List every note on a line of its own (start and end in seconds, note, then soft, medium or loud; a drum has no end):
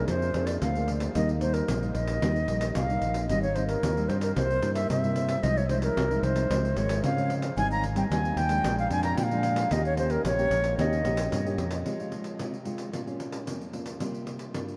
0.00 0.30 A#3 medium
0.00 0.30 D4 medium
0.00 0.30 G#4 medium
0.08 0.31 F2 loud
0.08 0.59 F3 medium
0.08 0.48 C5 loud
0.08 pandeiro medium
0.22 pandeiro soft
0.34 0.57 F2 medium
0.34 0.60 A#3 medium
0.34 0.60 D4 medium
0.34 0.60 G#4 medium
0.34 pandeiro medium
0.46 0.61 D5 medium
0.46 pandeiro medium
0.61 1.07 D2 medium
0.61 1.13 F3 medium
0.61 0.91 F5 medium
0.61 pandeiro medium
0.75 1.11 A#3 medium
0.75 1.12 D4 medium
0.75 1.12 G#4 medium
0.75 pandeiro soft
0.88 pandeiro medium
1.00 pandeiro medium
1.15 1.61 D#2 loud
1.15 1.66 D#3 medium
1.15 1.31 G3 medium
1.15 1.31 A#3 medium
1.15 1.31 D#4 medium
1.15 1.29 D#5 medium
1.15 pandeiro medium
1.29 pandeiro soft
1.41 1.77 G3 soft
1.41 1.78 A#3 medium
1.41 1.78 D#4 medium
1.41 1.55 C5 medium
1.41 pandeiro medium
1.54 1.94 A#4 medium
1.54 pandeiro medium
1.68 1.91 A#1 medium
1.68 2.20 A#2 medium
1.68 pandeiro medium
1.83 2.18 G3 medium
1.83 2.19 A#3 medium
1.83 2.19 D#4 medium
1.83 pandeiro soft
1.95 2.18 A#1 medium
1.95 2.71 D#5 medium
1.95 pandeiro medium
2.08 pandeiro medium
2.22 2.45 D#2 loud
2.22 2.73 D#3 medium
2.22 2.38 G3 medium
2.22 2.38 A#3 medium
2.22 2.38 D#4 medium
2.22 pandeiro medium
2.36 pandeiro soft
2.48 2.71 A#1 medium
2.48 2.74 G3 medium
2.48 2.74 A#3 medium
2.48 2.74 D#4 medium
2.48 pandeiro medium
2.61 pandeiro medium
2.75 3.00 C2 medium
2.75 3.27 A#2 medium
2.75 3.25 F5 medium
2.75 pandeiro medium
2.90 3.25 G3 medium
2.90 3.25 A#3 medium
2.90 3.26 D#4 medium
2.90 pandeiro soft
3.02 3.26 A#1 medium
3.02 pandeiro medium
3.14 pandeiro medium
3.29 3.75 G#1 loud
3.29 3.80 G#2 medium
3.29 3.45 G3 medium
3.29 3.45 C4 medium
3.29 3.46 D#4 medium
3.29 3.42 D#5 medium
3.29 pandeiro medium
3.43 3.56 C#5 medium
3.43 pandeiro soft
3.55 3.92 G3 soft
3.55 3.92 C4 medium
3.55 3.92 D#4 medium
3.55 3.67 C5 medium
3.55 pandeiro medium
3.68 4.10 A#4 medium
3.68 pandeiro medium
3.83 4.06 D#2 medium
3.83 4.34 D#3 soft
3.83 pandeiro medium
3.97 4.32 G3 medium
3.97 4.32 C4 medium
3.97 4.33 D#4 medium
3.97 pandeiro soft
4.09 4.32 G2 medium
4.09 4.21 C5 medium
4.09 pandeiro medium
4.21 4.35 A#4 medium
4.21 pandeiro medium
4.36 4.59 C2 loud
4.36 4.87 C3 medium
4.36 4.52 G3 medium
4.36 4.52 A#3 medium
4.36 4.52 E4 medium
4.36 4.73 C5 loud
4.36 pandeiro medium
4.50 pandeiro soft
4.62 4.85 G2 medium
4.62 4.88 G3 medium
4.62 4.88 A#3 medium
4.62 4.88 E4 medium
4.62 pandeiro medium
4.75 4.88 E5 medium
4.75 pandeiro medium
4.89 5.40 G2 medium
4.89 5.35 C3 medium
4.89 5.45 E5 medium
4.89 pandeiro medium
5.03 5.39 G3 medium
5.03 5.39 A#3 medium
5.03 5.39 E4 medium
5.03 pandeiro soft
5.16 pandeiro medium
5.29 pandeiro medium
5.43 5.89 C2 loud
5.43 5.94 C3 medium
5.43 5.59 F3 medium
5.43 5.59 G#3 medium
5.43 5.59 D#4 medium
5.43 5.59 D#5 medium
5.43 pandeiro medium
5.57 5.69 C#5 medium
5.57 pandeiro soft
5.69 5.95 F3 medium
5.69 5.95 G#3 medium
5.69 5.95 D#4 medium
5.69 5.82 C5 medium
5.69 pandeiro medium
5.82 6.25 A#4 medium
5.82 pandeiro medium
5.96 6.20 C2 medium
5.96 6.47 C3 medium
5.96 pandeiro medium
6.10 6.46 F3 medium
6.10 6.46 G#3 medium
6.10 6.47 D#4 medium
6.10 pandeiro soft
6.23 6.46 C2 loud
6.23 6.78 C5 medium
6.23 pandeiro medium
6.36 pandeiro medium
6.50 6.73 C#2 loud
6.50 7.01 C#3 medium
6.50 6.66 F3 medium
6.50 6.66 G#3 medium
6.50 6.66 C4 medium
6.50 pandeiro medium
6.65 pandeiro soft
6.76 6.99 G#1 medium
6.76 7.12 F3 medium
6.76 7.12 G#3 medium
6.76 7.13 C4 medium
6.76 7.03 C#5 loud
6.76 pandeiro medium
6.89 pandeiro medium
7.03 7.54 G#2 medium
7.03 7.49 C#3 medium
7.03 7.33 F5 medium
7.03 pandeiro medium
7.17 7.53 F3 medium
7.17 7.53 G#3 medium
7.17 7.53 C4 medium
7.17 pandeiro soft
7.30 pandeiro medium
7.42 pandeiro medium
7.57 8.03 G#1 loud
7.57 8.08 G#2 medium
7.57 7.82 G3 medium
7.57 7.82 C4 medium
7.57 7.83 D#4 medium
7.57 7.70 G#5 loud
7.57 pandeiro medium
7.72 7.84 A#5 loud
7.72 pandeiro soft
7.84 pandeiro medium
7.95 8.06 G3 medium
7.95 8.06 C4 medium
7.95 8.06 D#4 medium
7.95 8.03 G5 medium
7.95 pandeiro medium
8.10 8.33 D#2 medium
8.10 8.62 D#3 medium
8.10 8.36 G3 medium
8.10 8.36 C4 medium
8.10 8.36 D#4 medium
8.10 8.39 G#5 loud
8.10 pandeiro medium
8.25 pandeiro soft
8.36 8.60 D#2 loud
8.36 8.78 G5 loud
8.36 pandeiro medium
8.49 8.86 F3 medium
8.49 8.86 G#3 medium
8.49 8.86 D4 medium
8.49 pandeiro medium
8.64 8.87 A#1 loud
8.64 9.15 A#2 medium
8.64 pandeiro medium
8.78 8.91 F5 medium
8.78 pandeiro soft
8.90 9.13 F2 medium
8.90 9.26 F3 medium
8.90 9.27 G#3 medium
8.90 9.27 D4 medium
8.90 9.03 G#5 loud
8.90 pandeiro medium
9.03 9.16 A#5 loud
9.03 pandeiro medium
9.17 9.69 F2 medium
9.17 9.63 A#2 loud
9.17 9.25 G5 medium
9.17 pandeiro medium
9.24 9.74 F5 loud
9.31 9.67 F3 medium
9.31 9.67 G#3 medium
9.31 9.68 D4 medium
9.31 pandeiro soft
9.43 pandeiro medium
9.56 pandeiro medium
9.71 10.17 D#2 loud
9.71 10.22 D#3 medium
9.71 9.94 A#3 medium
9.71 9.94 C#4 medium
9.71 9.94 G4 medium
9.71 9.85 D#5 medium
9.71 pandeiro medium
9.85 9.98 C#5 medium
9.85 pandeiro soft
9.97 10.23 A#3 medium
9.97 10.23 C#4 medium
9.97 10.23 G4 medium
9.97 10.12 C5 medium
9.97 pandeiro medium
10.10 10.25 A#4 medium
10.10 pandeiro medium
10.24 10.47 A#1 medium
10.24 10.76 A#2 medium
10.24 10.75 C#5 loud
10.24 pandeiro medium
10.38 10.74 A#3 medium
10.38 10.74 C#4 medium
10.38 10.75 G4 medium
10.38 pandeiro soft
10.50 10.74 A#1 loud
10.50 pandeiro medium
10.64 pandeiro medium
10.78 11.01 D#2 loud
10.78 11.29 D#3 medium
10.78 11.01 A#3 medium
10.78 11.01 C#4 medium
10.78 11.01 G4 medium
10.78 11.55 D#5 medium
10.78 pandeiro medium
10.93 pandeiro soft
11.04 11.27 A#1 medium
11.04 11.41 A#3 medium
11.04 11.41 C#4 medium
11.04 11.41 G4 medium
11.04 pandeiro medium
11.17 pandeiro medium
11.32 11.56 G2 medium
11.32 11.83 A#2 medium
11.32 pandeiro medium
11.46 11.81 A#3 medium
11.46 11.82 C#4 medium
11.46 11.82 G4 medium
11.46 pandeiro soft
11.58 11.82 F2 medium
11.58 pandeiro medium
11.71 pandeiro medium
11.85 12.36 F3 medium
11.85 11.95 G#3 medium
11.85 11.95 C4 soft
11.85 11.95 F4 medium
11.85 pandeiro medium
12.00 12.35 G#3 soft
12.00 12.36 C4 medium
12.00 12.36 F4 medium
12.00 pandeiro soft
12.12 pandeiro soft
12.24 pandeiro medium
12.39 12.90 C3 medium
12.39 12.55 G#3 soft
12.39 12.55 C4 soft
12.39 12.55 F4 medium
12.39 pandeiro medium
12.54 pandeiro soft
12.65 12.90 G#3 soft
12.65 12.91 C4 soft
12.65 12.91 F4 medium
12.65 pandeiro soft
12.78 pandeiro medium
12.93 13.44 A#2 medium
12.93 13.01 A#3 soft
12.93 13.01 C#4 soft
12.93 13.01 F4 medium
12.93 pandeiro medium
13.07 13.42 A#3 medium
13.07 13.43 C#4 medium
13.07 13.43 F4 medium
13.07 pandeiro soft
13.20 pandeiro medium
13.32 pandeiro medium
13.46 13.98 F2 medium
13.46 13.62 A#3 soft
13.46 13.63 C#4 soft
13.46 13.63 F4 medium
13.46 pandeiro medium
13.61 pandeiro soft
13.73 13.98 A#3 soft
13.73 13.98 C#4 soft
13.73 13.98 F4 soft
13.73 pandeiro soft
13.86 pandeiro medium
14.00 14.51 C3 medium
14.00 14.35 G3 soft
14.00 14.35 A#3 medium
14.00 14.35 F4 medium
14.00 pandeiro medium
14.14 pandeiro soft
14.27 pandeiro soft
14.39 pandeiro medium
14.54 14.77 G2 medium
14.54 14.77 G3 medium
14.54 14.77 A#3 soft
14.54 14.77 F4 medium
14.54 pandeiro medium
14.68 pandeiro soft